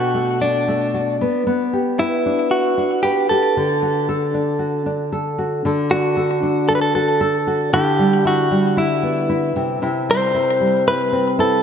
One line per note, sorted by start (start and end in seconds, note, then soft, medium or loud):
0.00 1.25 B2 medium
0.00 0.41 D4 medium
0.00 0.39 F#4 medium
0.00 0.93 F#4 medium
0.14 0.67 A3 medium
0.41 1.73 D4 medium
0.41 1.16 D4 medium
0.68 1.25 A3 medium
0.94 1.25 F#4 medium
1.21 1.46 B3 medium
1.47 3.56 B3 medium
1.73 2.51 G4 medium
1.99 2.48 E4 medium
1.99 3.03 B4 medium
2.26 2.77 D4 medium
2.51 3.00 F#4 medium
2.78 4.34 D4 medium
3.03 3.29 G4 medium
3.03 3.61 B4 medium
3.29 3.61 G4 medium
3.29 5.08 A4 medium
3.57 5.65 D3 medium
3.83 4.59 F#4 medium
4.09 5.12 A4 medium
4.34 4.86 D4 medium
4.59 5.38 F#4 medium
4.86 5.91 D4 medium
5.12 5.66 A4 medium
5.39 6.95 F#4 medium
5.65 7.72 D3 medium
5.65 6.16 A4 medium
5.91 6.42 D4 medium
5.91 6.71 F#4 loud
6.17 6.69 A4 medium
6.43 7.78 D4 medium
6.69 6.75 A4 loud
6.69 7.20 A4 medium
6.75 6.81 B4 medium
6.82 6.94 A4 loud
6.95 7.46 F#4 medium
6.95 7.73 A4 loud
7.21 7.73 A4 medium
7.47 7.78 F#4 medium
7.73 9.56 D3 medium
7.73 8.25 E4 medium
7.73 8.27 G4 loud
7.99 8.51 G3 medium
8.25 8.77 E4 medium
8.25 8.80 F#4 medium
8.51 10.09 G3 medium
8.77 9.29 E4 medium
8.77 9.52 E4 medium
9.03 9.61 B3 medium
9.29 9.82 E4 medium
9.56 9.81 C3 medium
9.82 11.63 C3 medium
9.82 10.34 E4 medium
10.09 10.59 G3 medium
10.09 10.84 C5 loud
10.35 10.87 E4 medium
10.61 11.63 G3 medium
10.87 11.39 E4 medium
10.87 11.40 B4 loud
11.12 11.63 C4 medium
11.39 11.63 E4 medium
11.39 11.63 A4 medium